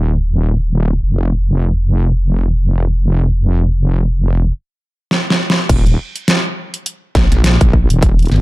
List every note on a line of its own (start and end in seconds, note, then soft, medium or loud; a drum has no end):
0.00 1.01 D#1 medium
1.03 4.53 F1 medium
5.11 snare medium
5.30 snare medium
5.50 snare medium
5.69 5.96 D#1 loud
5.69 kick loud
5.69 closed hi-hat medium
5.69 crash loud
5.86 closed hi-hat soft
6.16 closed hi-hat medium
6.28 snare loud
6.28 closed hi-hat medium
6.74 closed hi-hat medium
6.86 closed hi-hat medium
7.15 7.29 A#1 loud
7.15 kick loud
7.15 snare medium
7.15 closed hi-hat soft
7.32 7.58 A#1 medium
7.32 snare soft
7.32 closed hi-hat medium
7.44 snare loud
7.44 closed hi-hat medium
7.61 7.87 A#1 medium
7.61 kick loud
7.61 closed hi-hat medium
7.73 kick medium
7.90 8.30 D#1 loud
7.90 closed hi-hat medium
8.02 kick loud
8.02 closed hi-hat medium
8.19 closed hi-hat soft
8.22 closed hi-hat soft
8.26 closed hi-hat soft
8.28 8.41 G1 medium
8.28 snare soft
8.28 closed hi-hat soft
8.32 closed hi-hat soft
8.36 closed hi-hat soft